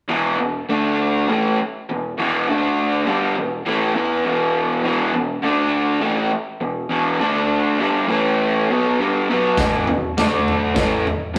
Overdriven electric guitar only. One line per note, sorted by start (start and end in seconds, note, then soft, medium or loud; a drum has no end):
0.09 0.37 E2 medium
0.09 0.38 B2 medium
0.09 0.39 E3 loud
0.39 0.63 E2 medium
0.39 0.63 B2 medium
0.69 1.27 D3 medium
0.69 1.27 A3 medium
0.69 1.28 D4 loud
1.29 1.57 A2 medium
1.29 1.58 E3 medium
1.29 1.58 A3 loud
1.61 muted overdriven electric guitar stroke medium
1.89 2.12 E2 medium
1.89 2.12 B2 medium
2.18 2.46 E2 loud
2.18 2.47 B2 loud
2.18 2.47 E3 medium
2.48 3.05 D3 medium
2.48 3.06 A3 medium
2.48 3.06 D4 medium
3.05 3.34 G2 medium
3.05 3.35 D3 medium
3.05 3.35 G3 loud
3.37 3.60 E2 medium
3.37 3.60 B2 medium
3.66 3.94 A2 medium
3.66 3.93 E3 loud
3.66 3.95 A3 loud
3.94 4.23 E3 medium
3.94 4.24 B3 medium
3.94 4.24 E4 loud
4.25 4.82 E2 medium
4.25 4.83 B2 medium
4.25 4.84 E3 medium
4.84 5.12 E2 medium
4.84 5.12 B2 medium
4.84 5.13 E3 loud
5.14 5.37 E2 medium
5.14 5.37 B2 medium
5.42 6.00 D3 medium
5.42 6.00 A3 medium
5.42 6.01 D4 loud
6.01 6.30 A2 medium
6.01 6.30 E3 loud
6.01 6.30 A3 loud
6.32 muted overdriven electric guitar stroke medium
6.61 6.85 E2 medium
6.61 6.85 B2 medium
6.89 7.19 E2 medium
6.89 7.19 B2 loud
6.89 7.19 E3 loud
7.19 7.78 D3 medium
7.19 7.79 A3 medium
7.19 7.79 D4 loud
7.79 8.08 G2 medium
7.79 8.07 D3 medium
7.79 8.09 G3 loud
8.08 8.67 A2 medium
8.08 8.67 E3 loud
8.08 8.68 A3 loud
8.70 8.98 B2 medium
8.70 8.98 F#3 medium
8.70 8.99 B3 medium
8.98 9.27 G2 medium
8.98 9.27 D3 medium
8.98 9.28 G3 medium
9.30 9.57 B2 medium
9.30 9.58 F#3 medium
9.30 9.58 B3 medium
9.58 9.86 E2 medium
9.58 9.87 B2 medium
9.58 9.87 E3 loud
9.88 10.11 E2 medium
9.88 10.11 B2 medium
10.18 10.75 D3 medium
10.18 10.76 A3 medium
10.18 10.76 D4 medium
10.75 11.04 A2 medium
10.75 11.05 E3 loud
10.75 11.05 A3 loud
11.07 muted overdriven electric guitar stroke medium
11.34 11.38 E2 medium